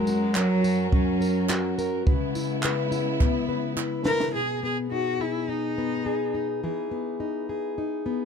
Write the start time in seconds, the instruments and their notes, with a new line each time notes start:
Already playing: string section F#2 F#3 C#4 A#4, steel-string acoustic guitar F#3 A#4, cello G#3
0.07 steel-string acoustic guitar F#4, tambourine
0.35 cello F#3, steel-string acoustic guitar A#4, clap
0.64 steel-string acoustic guitar F#4, tambourine
0.92 cello F#3, steel-string acoustic guitar C#4, kick
1.21 steel-string acoustic guitar A#4, tambourine
1.49 steel-string acoustic guitar F#4, clap
1.78 steel-string acoustic guitar A#4, tambourine
2.07 steel-string acoustic guitar C#3 B4, string section C#3 G#3 B3 E4, kick
2.35 steel-string acoustic guitar E4, tambourine
2.63 steel-string acoustic guitar B4, clap
2.91 steel-string acoustic guitar E4, tambourine
3.20 steel-string acoustic guitar B3, kick, clap
3.49 steel-string acoustic guitar B4
3.77 steel-string acoustic guitar E4, clap
4.05 cello A#4, steel-string acoustic guitar B4, snare
4.20 snare
4.34 steel-string acoustic guitar B2 G#4, cello G#4
4.63 steel-string acoustic guitar B3, cello G#4
4.92 steel-string acoustic guitar D#4, cello F#4
5.20 cello E4, steel-string acoustic guitar G#4
5.48 steel-string acoustic guitar D#4, cello D#4
5.78 steel-string acoustic guitar B3
6.06 steel-string acoustic guitar G#4
6.34 steel-string acoustic guitar D#4
6.64 steel-string acoustic guitar E3 G#4
6.91 steel-string acoustic guitar B3
7.20 steel-string acoustic guitar D#4
7.49 steel-string acoustic guitar G#4
7.78 steel-string acoustic guitar D#4
8.06 steel-string acoustic guitar B3